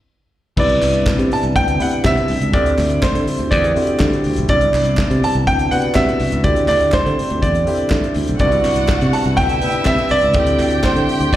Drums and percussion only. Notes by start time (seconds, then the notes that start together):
0.57 kick, crash
0.69 closed hi-hat
0.82 clap, open hi-hat
0.93 closed hi-hat
1.06 kick, snare, clap
1.19 closed hi-hat
1.31 open hi-hat
1.43 closed hi-hat
1.56 kick, closed hi-hat
1.68 closed hi-hat
1.80 open hi-hat
1.91 closed hi-hat
2.04 kick, snare, clap
2.17 closed hi-hat
2.28 open hi-hat
2.41 closed hi-hat
2.53 kick, closed hi-hat
2.66 closed hi-hat
2.78 clap, open hi-hat
2.90 closed hi-hat
3.03 kick, snare, clap
3.15 closed hi-hat
3.27 open hi-hat
3.39 closed hi-hat
3.52 kick, closed hi-hat
3.64 closed hi-hat
3.76 open hi-hat
3.87 closed hi-hat
3.99 kick, snare, clap
4.13 closed hi-hat
4.24 open hi-hat
4.36 closed hi-hat
4.48 kick, closed hi-hat
4.61 closed hi-hat
4.74 clap, open hi-hat
4.85 closed hi-hat
4.97 kick, snare, clap
5.11 closed hi-hat
5.24 open hi-hat
5.34 closed hi-hat
5.47 kick, closed hi-hat
5.59 closed hi-hat
5.71 open hi-hat
5.82 closed hi-hat
5.95 kick, snare, clap
6.09 closed hi-hat
6.20 open hi-hat
6.32 closed hi-hat
6.44 kick, closed hi-hat
6.56 closed hi-hat
6.68 clap, open hi-hat
6.80 closed hi-hat
6.92 kick, snare, clap
7.06 closed hi-hat
7.19 open hi-hat
7.30 closed hi-hat
7.43 kick, closed hi-hat
7.55 closed hi-hat
7.67 open hi-hat
7.77 closed hi-hat
7.90 kick, snare, clap
8.04 closed hi-hat
8.14 open hi-hat
8.27 closed hi-hat
8.39 kick, closed hi-hat
8.52 closed hi-hat
8.64 clap, open hi-hat
8.76 closed hi-hat
8.88 kick, snare, clap
9.01 closed hi-hat
9.13 open hi-hat
9.24 closed hi-hat
9.37 kick, closed hi-hat
9.49 closed hi-hat
9.61 open hi-hat
9.72 closed hi-hat
9.85 kick, snare, clap
9.98 closed hi-hat
10.09 open hi-hat
10.21 closed hi-hat
10.33 kick, closed hi-hat
10.46 closed hi-hat
10.59 clap, open hi-hat
10.70 closed hi-hat
10.83 kick, snare, clap
10.96 closed hi-hat
11.09 open hi-hat
11.20 closed hi-hat
11.33 kick